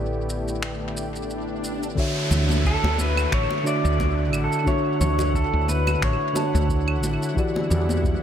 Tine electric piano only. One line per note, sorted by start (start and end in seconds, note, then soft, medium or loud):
0.00 1.93 A3 medium
0.00 1.94 E4 medium
0.00 1.94 G4 medium
0.00 1.95 B4 medium
0.00 1.95 D5 medium
1.95 3.61 D3 medium
1.95 3.62 D4 medium
1.95 3.63 F#4 medium
1.95 3.63 C#5 medium
2.00 3.64 E5 loud
3.63 4.62 D3 medium
3.63 4.63 D4 medium
3.63 4.63 F#4 medium
3.63 4.64 D5 medium
3.67 4.64 E5 loud
4.64 6.31 D3 medium
4.64 6.31 D4 medium
4.64 6.32 F#4 medium
4.64 6.32 C#5 medium
4.68 6.33 E5 loud
6.33 7.32 D3 medium
6.33 7.32 D4 medium
6.33 7.33 F#4 medium
6.33 7.33 C#5 medium
6.33 7.34 A5 medium
7.35 8.23 E3 medium
7.35 8.23 E4 medium
7.35 8.23 F#4 medium
7.35 8.23 G4 medium
7.39 8.23 D5 loud